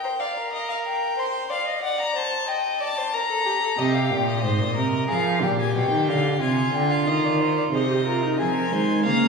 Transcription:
Already playing: G5
0.04 C5
0.20 D5 F5
0.36 A#4
0.53 D#5
0.69 F5
0.86 G5
1.17 C5 C6
1.50 D5 F5
1.65 D#5
1.82 D5 F#5
2.01 A#5
2.15 C5 A5
2.48 D#5 G5
2.80 D5 A5
2.98 C5
3.13 A#4 A#5
3.29 A4
3.46 G4
3.62 A4
3.78 C3 G4 D#5
3.94 F5
4.11 A#2 G5
4.28 D#5
4.43 G#2 C5
4.60 A#2
4.75 C3 A#4
5.08 F3 G#4 F5
5.41 A#2 G4 G5
5.60 G#5
5.75 B2 G5
5.92 D#3
6.09 D3 F5
6.40 C3 F4 G#5
6.74 D3 G5
6.91 F5
7.07 D#3 D#5
7.23 D5
7.40 C5
7.57 D5
7.73 C3 G#4 C5 D#5
7.89 G4
8.05 F4 A#4
8.23 D#4
8.38 F3 C4 G#4 G#5
8.55 A#4
8.71 D#3 G#3 C5
9.04 C#3 A#3 F5 A#5

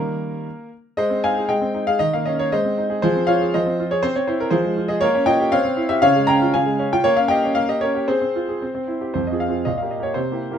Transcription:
Already playing: D#3 G3 A#3 A#4
0.97 G#3 C5 D#5
1.10 C4
1.24 D#4 F5 G#5
1.38 G#4
1.49 G#3 D#5 G5
1.61 C4
1.74 D#4
1.87 G#4 F5
1.99 D#3 D#5
2.13 A#3 F5
2.25 C#4 D#5
2.39 D#4 C#5
2.52 G#3 C5 D#5
2.65 C4
2.78 D#4
2.90 G#4
3.02 F3 G#4 C5
3.16 C4
3.27 F4 C#5 F5
3.41 G#4
3.54 F3 C5 D#5
3.66 C4
3.79 F4
3.91 G#4 C#5
4.03 C4 C5
4.16 C4 C#5
4.27 E4 C5
4.40 A#4
4.51 F3 G#4 C5
4.64 G#3
4.77 F4
4.88 G#4 D#5
5.01 A#3 A#4 C#5
5.15 C#4
5.26 F4 D#5 G5
5.40 G4
5.52 C4 C#5 F5
5.65 C4
5.77 E4
5.89 G4 E5
6.02 C#3 C#5 F5
6.16 G#3
6.27 C#4 G5 A#5
6.42 F4
6.54 C#3 F5 G#5
6.66 G#3
6.79 C#4
6.92 F4 G5
7.04 A#3 C#5
7.17 C#4 F5
7.28 G4 D#5 G5
7.44 C#4
7.55 A#3 F5
7.69 G4 D#5
7.81 C#4 A#4 C#5
7.95 G4
8.08 C4 G#4 C5
8.22 C4
8.35 F4
8.49 G#4
8.62 C4
8.75 C4
8.88 E4
9.01 G4
9.14 F2 C5
9.27 D#5
9.31 C4 F4 G#4
9.40 F5
9.48 C4 F4 G#4
9.65 A#2 D#5
9.78 F5
9.82 A#3 G4
9.91 D#5
10.00 A#3 G4 C#5
10.14 C3 C5
10.31 A#3 E4 G4
10.50 A#3 E4 G4 A#4

